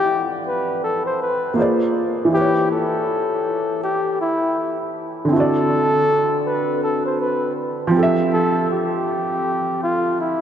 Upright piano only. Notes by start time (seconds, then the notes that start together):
Already playing: E3 E4 G4 D5 F#5
1.54 A#3 F4 G#4
1.60 C5 D5
2.25 E3 E4
2.33 G4
2.37 B4 C#5
5.25 D3 C4
5.33 E4 F#4
5.40 D5
7.87 F3 C4
7.95 G4 A4
8.03 E5